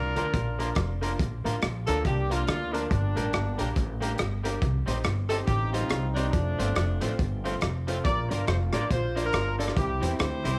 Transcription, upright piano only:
0.16 0.29 A#3 loud
0.16 0.29 D4 medium
0.16 0.29 F4 medium
0.16 0.30 A#4 loud
0.59 0.72 A#3 medium
0.59 0.72 D4 medium
0.59 0.72 F4 medium
0.59 0.72 A#4 loud
1.01 1.15 A#3 loud
1.01 1.15 D4 medium
1.01 1.15 F4 medium
1.01 1.15 A#4 loud
1.44 1.57 A#3 medium
1.44 1.58 D4 medium
1.44 1.58 F4 medium
1.44 1.58 A#4 loud
1.87 2.00 A#3 loud
1.87 2.01 D4 medium
1.87 2.01 F4 medium
1.87 2.01 A#4 loud
2.30 2.43 A#3 medium
2.30 2.43 D4 medium
2.30 2.43 F4 medium
2.30 2.44 A#4 loud
2.73 2.86 A#3 medium
2.73 2.86 D4 medium
2.73 2.86 F4 medium
2.73 2.87 A#4 loud
3.16 3.29 A#3 medium
3.16 3.29 D4 medium
3.16 3.29 G4 medium
3.16 3.29 A#4 medium
3.59 3.72 A#3 loud
3.59 3.72 D4 medium
3.59 3.72 G4 medium
3.59 3.72 A#4 loud
4.01 4.14 A#3 medium
4.01 4.15 D4 medium
4.01 4.15 G4 medium
4.01 4.15 A#4 medium
4.44 4.57 A#3 medium
4.44 4.57 D4 medium
4.44 4.58 G4 medium
4.44 4.58 A#4 loud
4.87 5.00 C4 medium
4.87 5.00 D#4 medium
4.87 5.01 G4 medium
4.87 5.01 C5 loud
5.30 5.43 C4 medium
5.30 5.43 D#4 medium
5.30 5.43 G4 medium
5.30 5.44 C5 loud
5.72 5.86 C4 medium
5.72 5.86 D#4 medium
5.72 5.86 G4 medium
5.72 5.86 C5 loud
6.16 6.29 C4 loud
6.16 6.29 D#4 medium
6.16 6.29 G4 medium
6.16 6.29 C5 loud
6.59 6.72 C4 medium
6.59 6.72 F4 medium
6.59 6.72 A4 medium
6.59 6.72 C5 medium
7.01 7.14 C4 loud
7.01 7.14 F4 medium
7.01 7.15 A4 medium
7.01 7.15 C5 loud
7.44 7.57 C4 medium
7.44 7.58 F4 medium
7.44 7.58 A4 medium
7.44 7.58 C5 loud
7.87 8.00 C4 medium
7.87 8.00 F4 medium
7.87 8.01 A4 medium
7.87 8.01 C5 medium
8.30 8.43 D4 medium
8.30 8.43 F4 medium
8.30 8.43 A#4 medium
8.30 8.44 D5 loud
8.73 8.86 D4 medium
8.73 8.86 F4 medium
8.73 8.86 A#4 medium
8.73 8.86 D5 loud
9.16 9.29 D4 medium
9.16 9.29 F4 medium
9.16 9.29 A#4 medium
9.16 9.29 D5 loud
9.58 9.72 D4 medium
9.58 9.72 F4 medium
9.58 9.72 A#4 medium
9.58 9.72 D5 loud
10.01 10.15 C4 medium
10.01 10.15 E4 medium
10.01 10.15 G4 medium
10.01 10.15 C5 loud
10.45 10.57 C4 loud
10.45 10.58 E4 medium
10.45 10.58 G4 medium
10.45 10.58 C5 loud

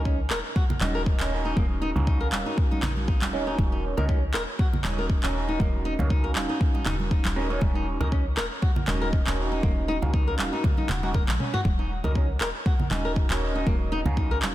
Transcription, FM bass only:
0.00 0.32 C#2 loud
0.30 0.42 D#1 medium
0.80 1.16 D#1 loud
1.20 1.54 D#1 loud
1.57 1.92 D#1 loud
1.95 2.33 C#2 loud
2.32 2.44 D#1 medium
2.83 3.23 A#1 medium
3.22 3.56 D#1 medium
3.58 3.94 D#1 loud
3.98 4.35 C#2 loud
4.34 4.46 D#1 medium
4.84 5.20 D#1 loud
5.23 5.57 D#1 loud
5.60 5.95 D#1 medium
5.99 6.37 C#2 loud
6.36 6.47 D#1 medium
6.86 7.22 D#1 loud
7.25 7.59 D#1 loud
7.62 7.97 D#1 loud
8.00 8.39 C#2 loud
8.37 8.49 D#1 medium
8.88 9.23 D#1 loud
9.27 9.61 D#1 loud
9.63 9.99 D#1 loud
10.02 10.40 C#2 medium
10.39 10.51 D#1 medium
10.89 11.25 D#1 loud
11.28 11.38 A#1 medium
11.65 12.01 D#1 loud
12.04 12.42 C#2 loud
12.40 12.52 D#1 medium
12.90 13.26 D#1 loud
13.30 13.64 D#1 loud
13.67 14.02 D#1 loud
14.05 14.44 C#2 loud
14.42 14.54 D#1 medium

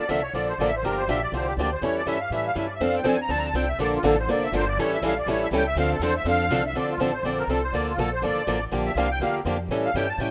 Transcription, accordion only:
0.09 0.23 E5 medium
0.23 0.33 C#5 medium
0.34 0.48 D5 medium
0.49 0.59 C5 medium
0.59 0.67 D5 medium
0.68 0.75 E5 medium
0.76 0.84 C5 medium
0.84 0.97 A#4 medium
0.97 1.08 C5 medium
1.09 1.22 E5 medium
1.23 1.33 D5 medium
1.34 1.47 C5 medium
1.47 1.53 G4 medium
1.58 1.71 D5 medium
1.72 1.82 C5 medium
1.83 1.96 C#5 medium
1.97 2.07 D5 medium
2.07 2.20 E5 medium
2.21 2.31 F5 medium
2.32 2.45 E5 medium
2.47 2.56 F5 medium
2.58 2.65 E5 medium
2.66 2.73 D5 medium
2.75 2.82 E5 medium
2.83 2.95 F5 medium
2.97 3.06 G5 medium
3.08 3.20 G#5 medium
3.22 3.31 A#5 medium
3.31 3.38 A5 medium
3.39 3.46 A#5 loud
3.46 3.54 A5 medium
3.55 3.69 G5 medium
3.69 3.79 E5 medium
3.80 3.93 D5 medium
3.95 4.05 F4 medium
4.06 4.18 A4 medium
4.20 4.29 C5 medium
4.31 4.43 D5 medium
4.44 4.54 E5 loud
4.55 4.68 C5 medium
4.69 4.78 D5 loud
4.79 4.92 C#5 medium
4.93 5.03 E5 medium
5.05 5.17 F5 medium
5.18 5.28 D5 medium
5.29 5.42 C#5 medium
5.43 5.49 E5 loud
5.54 5.66 G5 medium
5.67 5.77 E5 loud
5.79 5.91 F5 loud
5.93 6.02 A4 medium
6.03 6.16 C5 medium
6.17 6.26 E5 medium
6.28 6.63 F5 loud
6.67 6.76 E5 loud
6.76 6.89 D5 medium
6.90 7.00 F4 medium
7.00 7.13 A4 medium
7.13 7.24 C5 medium
7.25 7.38 D5 medium
7.38 7.49 A#4 medium
7.50 7.63 A4 medium
7.63 7.73 C5 medium
7.74 7.87 D5 medium
7.89 7.98 F4 medium
8.00 8.12 A4 medium
8.13 8.23 C5 medium
8.24 8.64 D5 medium
8.86 8.96 E5 medium
8.97 9.10 F5 medium
9.11 9.21 G5 loud
9.23 9.35 F5 medium
9.85 9.95 F5 medium
9.95 10.09 G5 medium
10.09 10.19 A5 loud
10.21 10.31 G5 medium

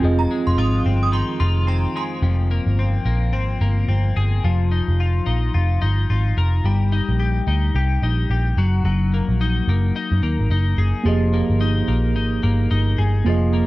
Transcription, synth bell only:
0.19 0.30 A#5 medium
0.47 0.57 C6 medium
0.58 0.74 D#6 medium
1.03 1.13 D#6 medium
1.13 1.39 C6 medium
1.40 1.56 C6 medium
1.68 1.84 A#5 medium
1.97 2.12 C6 medium

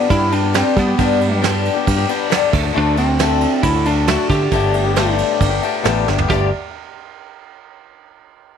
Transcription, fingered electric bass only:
0.10 0.62 G2 loud
0.77 0.94 G3 loud
0.99 1.68 G2 loud
1.87 2.04 G2 loud
2.53 2.70 D2 loud
2.77 3.45 D2 loud
3.64 4.15 D2 loud
4.30 4.47 D3 loud
4.52 5.21 G1 loud
5.41 5.58 G1 loud
5.85 6.05 A1 medium
6.08 6.28 G1 medium
6.30 6.51 G1 loud

